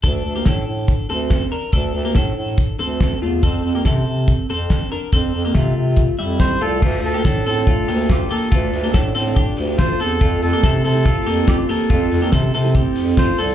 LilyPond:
<<
  \new Staff \with { instrumentName = "Melodica" } { \time 4/4 \key d \minor \tempo 4 = 142 r1 | r1 | r1 | r2. c''8 a'8~ |
a'8 a'4 a'4. g'8 a'8~ | a'4 r2 c''8 a'8~ | a'8 a'4 a'4. g'8 a'8~ | a'4 r2 c''8 a'8 | }
  \new Staff \with { instrumentName = "Twelve-string acoustic guitar" } { \time 4/4 \key d \minor r1 | r1 | r1 | r1 |
<a d' f' a'>8. <d' f' a'>8 <d' f' a'>8 <d a d' f' a'>4 <d' f' a'>8 <d' f' a'>8. | <a d' f' a'>8. <d' f' a'>8 <d' f' a'>8 <d a d' f' a'>4 <d' f' a'>8 <d' f' a'>8. | <a c' e' a'>8. <c' e' a'>8 <c' e' a'>8 <f a c' e' a'>4 <c' e' a'>8 <c' e' a'>8. | <a c' e' a'>8. <c' e' a'>8 <c' e' a'>8 <f a c' e' a'>4 <c' e' a'>8 <c' e' a'>8. | }
  \new Staff \with { instrumentName = "Clean electric guitar" } { \time 4/4 \key d \minor <d' a'>8. <bes g'>16 <d' a'>4. <c' a'>4 <d' bes'>8 | <d' a'>8. <bes g'>16 <d' a'>4. <c' a'>4 <a f'>8 | <c' a'>8. <bes g'>16 <c' a'>4. <c' a'>4 <d' bes'>8 | <c' a'>8. <bes g'>16 <a f'>4. <g e'>4 <a f'>8 |
<a f'>8. <bes g'>16 <d' a'>8 <c' a'>8 <a f'>8 <bes g'>8 <a f'>8 <bes g'>8 | <a f'>8. <bes g'>16 <d' a'>8 <c' a'>8 <d' g'>4 <a f'>8 <c' a'>8 | <a f'>8. <bes g'>16 <c' a'>8 <c' a'>8 <a f'>8 <bes g'>8 <a f'>8 <bes g'>8 | <a f'>8. <bes g'>16 <c' a'>8 <c' a'>8 <c' g'>4 <a f'>8 <c' a'>8 | }
  \new Staff \with { instrumentName = "Bass clarinet" } { \clef bass \time 4/4 \key d \minor d,8 d,8 a,8 a,8. r16 d,4 r8 | d,8 d,8 a,8 a,8. r16 d,4 e,8 | f,8 f,8 c8 c8. r16 f,4 r8 | f,8 f,8 c8 c8. r16 f,4 c,8 |
d,8 d,8 a,8 a,8. r16 d,4 r8 | d,8 d,8 a,8 a,8. r16 d,4 e,8 | f,8 f,8 c8 c8. r16 f,4 r8 | f,8 f,8 c8 c8. r16 f,4 c,8 | }
  \new DrumStaff \with { instrumentName = "Drums" } \drummode { \time 4/4 <hh bd>4 <hh bd sn>4 <hh bd>4 <hh bd sn>4 | <hh bd>4 <hh bd sn>4 <hh bd>4 <hh bd sn>4 | <hh bd>4 <hh bd sn>4 <hh bd>4 <hh bd sn>4 | <hh bd>4 <hh bd sn>4 <hh bd>4 <hh bd sn>4 |
<cymc bd>8 hho8 <hh bd sn>8 hho8 <hh bd>8 hho8 <hh bd sn>8 hho8 | <hh bd>8 hho8 <hh bd sn>8 hho8 <hh bd>8 hho8 <hh bd sn>8 hho8 | <hh bd>8 hho8 <hh bd sn>8 hho8 <hh bd>8 hho8 <hh bd sn>8 hho8 | <hh bd>8 hho8 <hh bd sn>8 hho8 <hh bd>8 hho8 <hh bd sn>8 hho8 | }
>>